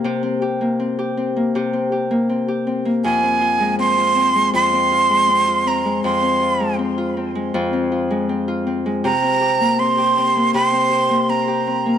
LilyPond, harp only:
\new Staff \with { instrumentName = "Harp" } { \time 4/4 \key f \minor \tempo 4 = 80 <c bes c' g'>16 c'16 g'16 bes16 c'16 g'16 c'16 bes16 <c g'>16 c'16 g'16 bes16 c'16 g'16 c'16 bes16 | <f, f'>16 c'16 f'16 aes16 c'16 f'16 c'16 aes16 <f, f'>16 c'16 f'16 aes16 c'16 f'16 c'16 aes16 | <f, f'>16 c'16 f'16 aes16 c'16 f'16 c'16 aes16 <f, f'>16 c'16 f'16 aes16 c'16 f'16 c'16 aes16 | <c g'>16 c'16 g'16 bes16 c'16 g'16 c'16 bes16 <c g'>16 c'16 g'16 bes16 c'16 g'16 c'16 bes16 | }